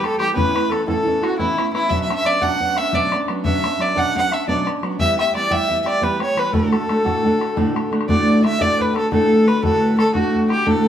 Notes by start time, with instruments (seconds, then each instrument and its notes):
Already playing: flute G4
0.03 steel-string acoustic guitar G3 B3 G4, fiddle A4, bodhran
0.19 steel-string acoustic guitar E3 G3 B3 G4, flute G4, fiddle G4, bodhran
0.34 steel-string acoustic guitar A2 E3 B3 C#4 E4, flute B4, fiddle B4, bodhran
0.54 steel-string acoustic guitar B3 C#4 E4, flute B4, bodhran
0.70 steel-string acoustic guitar E3 B3 C#4 E4, flute A4, fiddle A4, bodhran
0.86 steel-string acoustic guitar A2 E3 B3 C#4 E4, flute A4, fiddle A4, bodhran
1.05 steel-string acoustic guitar E3 B3 C#4 E4, bodhran
1.21 steel-string acoustic guitar B3 C#4 E4, flute F#4, fiddle F#4, bodhran
1.38 steel-string acoustic guitar A2 E3 B3 C#4 E4, fiddle E4, flute E4, bodhran
1.57 steel-string acoustic guitar B3 C#4 E4, bodhran
1.73 steel-string acoustic guitar E3 B3 C#4 E4, fiddle E4, flute E4, bodhran
1.89 steel-string acoustic guitar B2 F#3 B3 C#4 D4, fiddle E5, flute E5, bodhran
2.02 fiddle E5
2.08 steel-string acoustic guitar B3 C#4 D4, bodhran
2.15 flute E5, fiddle E5
2.25 steel-string acoustic guitar F#3 B3 C#4 D4, fiddle D5, bodhran
2.41 steel-string acoustic guitar B2 F#3 B3 C#4 D4, flute F#5, fiddle F#5, bodhran
2.59 steel-string acoustic guitar F#3 B3 C#4 D4, bodhran
2.76 steel-string acoustic guitar B3 C#4 D4, flute E5, fiddle E5, bodhran
2.92 steel-string acoustic guitar B2 F#3 B3 C#4 D4, flute D5, fiddle D5, bodhran
3.12 steel-string acoustic guitar B3 C#4 D4, bodhran
3.28 steel-string acoustic guitar F#3 B3 C#4 D4, bodhran
3.44 steel-string acoustic guitar B2 F#3 B3 C#4 D4, fiddle E5, flute E5, bodhran
3.64 steel-string acoustic guitar B3 C#4 D4, bodhran
3.78 steel-string acoustic guitar F#3 B3 C#4 D4, flute D5, fiddle D5, bodhran
3.95 steel-string acoustic guitar B2 F#3 B3 C#4 D4, flute F#5, fiddle F#5, bodhran
4.15 steel-string acoustic guitar F#3 B3 C#4 D4, flute F#5, fiddle F#5, bodhran
4.31 steel-string acoustic guitar B3 C#4 D4, flute E5, fiddle E5, bodhran
4.47 steel-string acoustic guitar B2 F#3 B3 C#4 D4, flute D5, fiddle D5, bodhran
4.66 steel-string acoustic guitar B3 C#4 D4, bodhran
4.83 steel-string acoustic guitar F#3 B3 C#4 D4, bodhran
4.99 steel-string acoustic guitar E3 G3 B3 G4, flute E5, fiddle E5, bodhran
5.17 steel-string acoustic guitar G3 B3 G4, flute E5, fiddle E5, bodhran
5.34 steel-string acoustic guitar E3 G3 B3 G4, fiddle D5, flute D5, bodhran
5.50 steel-string acoustic guitar E3 G3 B3 G4, fiddle E5, flute F#5, bodhran
5.57 flute E5
5.69 steel-string acoustic guitar E3 G3 B3 G4, bodhran
5.83 steel-string acoustic guitar B3 G4, fiddle D5 E5, bodhran
5.87 steel-string acoustic guitar G3, flute D5
6.01 steel-string acoustic guitar E3 G3 B3 G4, flute B4, fiddle B4, bodhran
6.20 steel-string acoustic guitar G3 B3 G4, fiddle C#5, flute C#5, bodhran
6.36 steel-string acoustic guitar E3 G3 B3 G4, flute B4, fiddle B4, bodhran
6.52 steel-string acoustic guitar D2 A2 D3 A3 D4 F#4, flute A4, fiddle A4, bodhran
6.72 steel-string acoustic guitar D3 A3 D4 F#4, bodhran
6.88 steel-string acoustic guitar D3 A3 D4 F#4, bodhran
7.05 steel-string acoustic guitar D2 A2 D3 A3 D4 F#4, bodhran
7.24 steel-string acoustic guitar D3 A3 D4 F#4, bodhran
7.39 steel-string acoustic guitar D3 A3 D4 F#4, bodhran
7.56 steel-string acoustic guitar D2 A2 D3 A3 D4 F#4, bodhran
7.74 steel-string acoustic guitar D3 A3 D4 F#4, bodhran
7.91 steel-string acoustic guitar D3 A3 D4 F#4, bodhran
8.01 bodhran
8.08 steel-string acoustic guitar D2 A2 D3 A3 D4 F#4, fiddle D5, flute D5, bodhran
8.44 steel-string acoustic guitar D3 A3 D4 F#4, flute E5, fiddle E5, bodhran
8.59 steel-string acoustic guitar D2 A2 D3 A3 D4 F#4, flute D5, fiddle D5, bodhran
8.78 flute B4, fiddle B4, bodhran
8.95 steel-string acoustic guitar D3 A3 D4 F#4, flute A4, fiddle A4, bodhran
9.11 steel-string acoustic guitar D2 A2 D3 A3 D4 F#4, flute A4, fiddle A4, bodhran
9.47 steel-string acoustic guitar D3 A3 D4 F#4, flute B4, fiddle B4, bodhran
9.62 steel-string acoustic guitar D2 A2 D3 A3 D4 F#4, flute A4, fiddle A4, bodhran
9.80 flute B4
9.97 steel-string acoustic guitar D3 A3 D4 F#4, flute A4, fiddle A4, bodhran
10.14 steel-string acoustic guitar D2 A2 D3 A3 D4 F#4, flute F#4, fiddle F#4, bodhran
10.35 bodhran
10.49 steel-string acoustic guitar D3 A3 D4 F#4, flute G4, fiddle G4, bodhran
10.65 steel-string acoustic guitar D2 A2 D3 A3 D4 F#4, fiddle A4, flute A4, bodhran